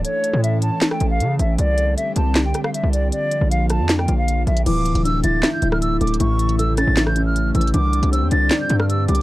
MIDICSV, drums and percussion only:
0, 0, Header, 1, 2, 480
1, 0, Start_track
1, 0, Key_signature, -1, "minor"
1, 0, Tempo, 384615
1, 59, Time_signature, 4, 2, 24, 8
1, 11510, End_track
2, 0, Start_track
2, 0, Title_t, "Drums"
2, 58, Note_on_c, 9, 42, 82
2, 182, Note_off_c, 9, 42, 0
2, 297, Note_on_c, 9, 42, 71
2, 422, Note_off_c, 9, 42, 0
2, 547, Note_on_c, 9, 42, 77
2, 672, Note_off_c, 9, 42, 0
2, 773, Note_on_c, 9, 42, 76
2, 898, Note_off_c, 9, 42, 0
2, 1015, Note_on_c, 9, 39, 90
2, 1018, Note_on_c, 9, 38, 111
2, 1022, Note_on_c, 9, 42, 83
2, 1138, Note_on_c, 9, 37, 95
2, 1140, Note_off_c, 9, 39, 0
2, 1143, Note_off_c, 9, 38, 0
2, 1147, Note_off_c, 9, 42, 0
2, 1252, Note_on_c, 9, 42, 75
2, 1263, Note_off_c, 9, 37, 0
2, 1377, Note_off_c, 9, 42, 0
2, 1502, Note_on_c, 9, 42, 75
2, 1627, Note_off_c, 9, 42, 0
2, 1739, Note_on_c, 9, 42, 70
2, 1864, Note_off_c, 9, 42, 0
2, 1978, Note_on_c, 9, 42, 80
2, 2103, Note_off_c, 9, 42, 0
2, 2217, Note_on_c, 9, 42, 73
2, 2342, Note_off_c, 9, 42, 0
2, 2467, Note_on_c, 9, 42, 78
2, 2592, Note_off_c, 9, 42, 0
2, 2693, Note_on_c, 9, 42, 77
2, 2818, Note_off_c, 9, 42, 0
2, 2936, Note_on_c, 9, 39, 92
2, 2939, Note_on_c, 9, 38, 110
2, 2943, Note_on_c, 9, 42, 83
2, 3061, Note_off_c, 9, 39, 0
2, 3064, Note_off_c, 9, 38, 0
2, 3068, Note_off_c, 9, 42, 0
2, 3173, Note_on_c, 9, 42, 72
2, 3179, Note_on_c, 9, 37, 74
2, 3298, Note_off_c, 9, 37, 0
2, 3298, Note_off_c, 9, 42, 0
2, 3298, Note_on_c, 9, 37, 99
2, 3423, Note_off_c, 9, 37, 0
2, 3424, Note_on_c, 9, 42, 77
2, 3549, Note_off_c, 9, 42, 0
2, 3660, Note_on_c, 9, 42, 71
2, 3785, Note_off_c, 9, 42, 0
2, 3898, Note_on_c, 9, 42, 83
2, 4022, Note_off_c, 9, 42, 0
2, 4136, Note_on_c, 9, 42, 73
2, 4261, Note_off_c, 9, 42, 0
2, 4386, Note_on_c, 9, 42, 79
2, 4511, Note_off_c, 9, 42, 0
2, 4612, Note_on_c, 9, 42, 79
2, 4619, Note_on_c, 9, 37, 76
2, 4737, Note_off_c, 9, 42, 0
2, 4744, Note_off_c, 9, 37, 0
2, 4856, Note_on_c, 9, 39, 91
2, 4859, Note_on_c, 9, 38, 117
2, 4863, Note_on_c, 9, 42, 82
2, 4979, Note_on_c, 9, 37, 95
2, 4981, Note_off_c, 9, 39, 0
2, 4984, Note_off_c, 9, 38, 0
2, 4988, Note_off_c, 9, 42, 0
2, 5093, Note_on_c, 9, 42, 72
2, 5104, Note_off_c, 9, 37, 0
2, 5218, Note_off_c, 9, 42, 0
2, 5344, Note_on_c, 9, 42, 79
2, 5468, Note_off_c, 9, 42, 0
2, 5579, Note_on_c, 9, 42, 45
2, 5699, Note_off_c, 9, 42, 0
2, 5699, Note_on_c, 9, 42, 76
2, 5818, Note_off_c, 9, 42, 0
2, 5818, Note_on_c, 9, 42, 78
2, 5819, Note_on_c, 9, 49, 101
2, 5943, Note_off_c, 9, 42, 0
2, 5944, Note_off_c, 9, 49, 0
2, 6058, Note_on_c, 9, 46, 78
2, 6060, Note_on_c, 9, 42, 62
2, 6180, Note_off_c, 9, 42, 0
2, 6180, Note_on_c, 9, 42, 59
2, 6183, Note_off_c, 9, 46, 0
2, 6305, Note_off_c, 9, 42, 0
2, 6308, Note_on_c, 9, 42, 77
2, 6432, Note_off_c, 9, 42, 0
2, 6535, Note_on_c, 9, 42, 81
2, 6660, Note_off_c, 9, 42, 0
2, 6777, Note_on_c, 9, 39, 91
2, 6780, Note_on_c, 9, 38, 116
2, 6784, Note_on_c, 9, 42, 83
2, 6902, Note_off_c, 9, 39, 0
2, 6905, Note_off_c, 9, 38, 0
2, 6909, Note_off_c, 9, 42, 0
2, 7014, Note_on_c, 9, 42, 74
2, 7139, Note_off_c, 9, 42, 0
2, 7140, Note_on_c, 9, 37, 100
2, 7264, Note_on_c, 9, 42, 79
2, 7265, Note_off_c, 9, 37, 0
2, 7388, Note_off_c, 9, 42, 0
2, 7499, Note_on_c, 9, 42, 64
2, 7579, Note_off_c, 9, 42, 0
2, 7579, Note_on_c, 9, 42, 62
2, 7660, Note_off_c, 9, 42, 0
2, 7660, Note_on_c, 9, 42, 64
2, 7738, Note_off_c, 9, 42, 0
2, 7738, Note_on_c, 9, 42, 83
2, 7863, Note_off_c, 9, 42, 0
2, 7978, Note_on_c, 9, 46, 82
2, 7979, Note_on_c, 9, 42, 64
2, 8100, Note_off_c, 9, 42, 0
2, 8100, Note_on_c, 9, 42, 61
2, 8102, Note_off_c, 9, 46, 0
2, 8225, Note_off_c, 9, 42, 0
2, 8227, Note_on_c, 9, 42, 81
2, 8352, Note_off_c, 9, 42, 0
2, 8453, Note_on_c, 9, 42, 79
2, 8460, Note_on_c, 9, 37, 81
2, 8578, Note_off_c, 9, 42, 0
2, 8585, Note_off_c, 9, 37, 0
2, 8696, Note_on_c, 9, 39, 92
2, 8699, Note_on_c, 9, 38, 116
2, 8703, Note_on_c, 9, 42, 83
2, 8820, Note_on_c, 9, 37, 97
2, 8821, Note_off_c, 9, 39, 0
2, 8824, Note_off_c, 9, 38, 0
2, 8828, Note_off_c, 9, 42, 0
2, 8934, Note_on_c, 9, 42, 76
2, 8944, Note_off_c, 9, 37, 0
2, 9058, Note_off_c, 9, 42, 0
2, 9184, Note_on_c, 9, 42, 75
2, 9309, Note_off_c, 9, 42, 0
2, 9419, Note_on_c, 9, 42, 65
2, 9499, Note_off_c, 9, 42, 0
2, 9499, Note_on_c, 9, 42, 64
2, 9578, Note_off_c, 9, 42, 0
2, 9578, Note_on_c, 9, 42, 66
2, 9658, Note_off_c, 9, 42, 0
2, 9658, Note_on_c, 9, 42, 81
2, 9782, Note_off_c, 9, 42, 0
2, 9898, Note_on_c, 9, 46, 81
2, 9899, Note_on_c, 9, 42, 62
2, 10019, Note_off_c, 9, 42, 0
2, 10019, Note_on_c, 9, 42, 62
2, 10023, Note_off_c, 9, 46, 0
2, 10144, Note_off_c, 9, 42, 0
2, 10146, Note_on_c, 9, 42, 79
2, 10271, Note_off_c, 9, 42, 0
2, 10372, Note_on_c, 9, 42, 79
2, 10497, Note_off_c, 9, 42, 0
2, 10615, Note_on_c, 9, 39, 96
2, 10618, Note_on_c, 9, 38, 117
2, 10622, Note_on_c, 9, 42, 83
2, 10740, Note_off_c, 9, 39, 0
2, 10743, Note_off_c, 9, 38, 0
2, 10747, Note_off_c, 9, 42, 0
2, 10851, Note_on_c, 9, 42, 75
2, 10976, Note_off_c, 9, 42, 0
2, 10977, Note_on_c, 9, 37, 101
2, 11102, Note_off_c, 9, 37, 0
2, 11103, Note_on_c, 9, 42, 76
2, 11228, Note_off_c, 9, 42, 0
2, 11338, Note_on_c, 9, 42, 65
2, 11417, Note_off_c, 9, 42, 0
2, 11417, Note_on_c, 9, 42, 64
2, 11510, Note_off_c, 9, 42, 0
2, 11510, End_track
0, 0, End_of_file